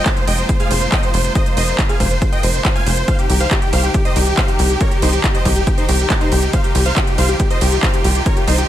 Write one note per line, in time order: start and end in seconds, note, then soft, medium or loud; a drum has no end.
0.00 3.04 G#2 medium
0.00 8.68 C3 medium
0.00 3.04 F3 medium
0.00 3.05 A#3 medium
0.00 3.04 F4 medium
0.06 0.13 C5 medium
0.06 kick loud
0.06 clap loud
0.06 closed hi-hat medium
0.17 0.24 C5 medium
0.17 closed hi-hat medium
0.27 0.44 F1 medium
0.27 0.34 D#5 medium
0.27 0.34 G5 loud
0.27 open hi-hat loud
0.27 ride medium
0.38 0.45 C5 medium
0.38 closed hi-hat medium
0.49 0.56 C5 medium
0.49 kick loud
0.49 closed hi-hat medium
0.60 0.67 G#4 medium
0.60 0.67 F5 medium
0.60 closed hi-hat medium
0.71 0.88 F1 loud
0.71 0.78 C5 medium
0.71 open hi-hat loud
0.71 ride medium
0.81 0.88 C5 medium
0.81 closed hi-hat medium
0.92 0.99 D#5 medium
0.92 0.99 G5 loud
0.92 kick loud
0.92 clap loud
0.92 closed hi-hat medium
1.03 1.10 C5 medium
1.03 closed hi-hat medium
1.14 1.31 F1 loud
1.14 1.21 C5 medium
1.14 open hi-hat loud
1.14 ride medium
1.24 1.32 C5 medium
1.24 closed hi-hat soft
1.35 1.42 C5 medium
1.35 1.42 D#5 medium
1.35 kick loud
1.35 closed hi-hat medium
1.46 1.53 C5 medium
1.46 closed hi-hat soft
1.57 1.74 F1 loud
1.57 1.64 C5 medium
1.57 1.64 D#5 loud
1.57 open hi-hat loud
1.57 ride medium
1.68 1.75 C5 medium
1.68 closed hi-hat soft
1.79 1.86 C5 medium
1.79 kick loud
1.79 clap loud
1.79 closed hi-hat medium
1.89 1.96 G#4 medium
1.89 1.96 F5 loud
1.89 closed hi-hat medium
2.00 2.17 F1 loud
2.00 2.07 C5 medium
2.00 kick medium
2.00 open hi-hat loud
2.00 ride medium
2.11 2.18 C5 medium
2.11 closed hi-hat medium
2.22 2.29 C5 medium
2.22 kick loud
2.22 closed hi-hat medium
2.33 2.40 D#5 medium
2.33 2.40 G5 loud
2.33 closed hi-hat medium
2.43 2.60 F1 loud
2.43 2.50 C5 medium
2.43 open hi-hat loud
2.43 ride medium
2.54 2.61 C5 medium
2.54 closed hi-hat medium
2.65 2.72 C5 medium
2.65 kick loud
2.65 clap loud
2.65 closed hi-hat medium
2.76 2.83 F5 medium
2.76 2.83 G#5 medium
2.76 closed hi-hat medium
2.86 3.03 F1 loud
2.86 2.93 C5 medium
2.86 open hi-hat loud
2.86 ride medium
2.97 3.04 C5 medium
2.97 closed hi-hat soft
3.08 8.68 D#3 medium
3.08 8.68 G3 medium
3.08 8.68 D#4 medium
3.08 6.50 G4 medium
3.08 3.15 C5 medium
3.08 3.15 F5 loud
3.08 kick loud
3.08 closed hi-hat medium
3.19 3.26 G4 medium
3.19 closed hi-hat medium
3.30 3.47 C2 medium
3.30 3.37 G4 medium
3.30 open hi-hat loud
3.30 ride medium
3.40 3.47 C5 medium
3.40 3.47 F5 medium
3.40 closed hi-hat medium
3.51 3.58 G4 medium
3.51 kick loud
3.51 clap loud
3.51 closed hi-hat medium
3.62 3.69 G4 medium
3.62 closed hi-hat medium
3.73 3.90 C2 medium
3.73 3.80 C5 medium
3.73 3.80 F5 loud
3.73 open hi-hat loud
3.73 ride medium
3.84 3.91 G4 medium
3.84 closed hi-hat soft
3.94 4.01 G4 medium
3.94 kick loud
3.94 closed hi-hat medium
4.05 4.12 C5 medium
4.05 4.12 D#5 medium
4.05 closed hi-hat medium
4.16 4.33 C2 medium
4.16 4.23 G4 medium
4.16 open hi-hat loud
4.16 ride medium
4.27 4.34 G4 medium
4.27 closed hi-hat medium
4.37 4.45 C5 medium
4.37 4.45 F5 medium
4.37 kick loud
4.37 clap loud
4.37 closed hi-hat medium
4.48 4.55 G4 medium
4.48 closed hi-hat medium
4.59 4.76 C2 loud
4.59 4.66 G4 medium
4.59 open hi-hat loud
4.59 ride medium
4.70 4.77 G4 medium
4.70 closed hi-hat medium
4.81 4.88 A#4 medium
4.81 4.88 C#5 loud
4.81 kick loud
4.81 closed hi-hat medium
4.91 4.99 G4 medium
4.91 closed hi-hat medium
5.02 5.19 C2 loud
5.02 5.09 D#4 medium
5.02 5.09 C5 loud
5.02 open hi-hat loud
5.02 ride medium
5.13 5.20 G4 medium
5.13 closed hi-hat medium
5.24 5.31 G4 medium
5.24 kick loud
5.24 clap loud
5.24 closed hi-hat medium
5.35 5.42 C5 medium
5.35 5.42 D#5 loud
5.35 closed hi-hat medium
5.45 5.62 C2 medium
5.45 5.52 G4 medium
5.45 kick medium
5.45 open hi-hat loud
5.45 ride medium
5.56 5.63 G4 medium
5.56 closed hi-hat medium
5.67 5.74 G4 medium
5.67 kick loud
5.67 closed hi-hat loud
5.78 5.85 D#4 medium
5.78 5.85 C5 loud
5.78 closed hi-hat medium
5.89 6.06 C2 loud
5.89 5.96 G4 medium
5.89 open hi-hat loud
5.89 ride medium
5.99 6.06 G4 medium
5.99 closed hi-hat medium
6.10 6.17 G4 medium
6.10 kick loud
6.10 clap loud
6.10 closed hi-hat medium
6.21 6.28 D#4 medium
6.21 6.28 C5 medium
6.21 closed hi-hat medium
6.32 6.49 C2 loud
6.32 6.39 G4 medium
6.32 open hi-hat loud
6.32 ride medium
6.43 6.50 G4 medium
6.43 closed hi-hat medium
6.53 8.68 F4 medium
6.53 6.60 C5 medium
6.53 6.60 F5 loud
6.53 kick loud
6.53 closed hi-hat loud
6.64 6.71 G4 medium
6.64 closed hi-hat medium
6.75 6.92 C2 loud
6.75 6.82 G4 medium
6.75 open hi-hat loud
6.75 ride medium
6.86 6.93 C5 medium
6.86 6.93 F5 loud
6.86 closed hi-hat medium
6.96 7.04 G4 medium
6.96 kick loud
6.96 clap loud
6.96 closed hi-hat loud
7.07 7.14 G4 medium
7.07 closed hi-hat medium
7.18 7.35 C2 medium
7.18 7.25 C5 medium
7.18 7.25 F5 loud
7.18 open hi-hat loud
7.18 ride medium
7.29 7.36 G4 medium
7.29 closed hi-hat medium
7.40 7.47 G4 medium
7.40 kick loud
7.40 closed hi-hat loud
7.50 7.58 C5 medium
7.50 7.58 D#5 medium
7.50 closed hi-hat medium
7.61 7.78 C2 medium
7.61 7.68 G4 medium
7.61 open hi-hat loud
7.61 ride medium
7.72 7.79 G4 medium
7.72 closed hi-hat medium
7.83 7.90 C5 medium
7.83 7.90 F5 medium
7.83 kick loud
7.83 clap loud
7.83 closed hi-hat loud
7.94 8.01 G4 medium
7.94 closed hi-hat medium
8.04 8.21 C2 loud
8.04 8.12 G4 medium
8.04 open hi-hat loud
8.04 ride medium
8.15 8.22 G4 medium
8.15 closed hi-hat medium
8.26 8.33 A#4 medium
8.26 8.33 C#5 medium
8.26 kick loud
8.26 closed hi-hat loud
8.37 8.44 G4 medium
8.37 closed hi-hat medium
8.48 8.65 C2 loud
8.48 8.55 D#4 medium
8.48 8.55 C5 medium
8.48 open hi-hat loud
8.48 ride medium
8.58 8.65 G4 medium
8.58 closed hi-hat medium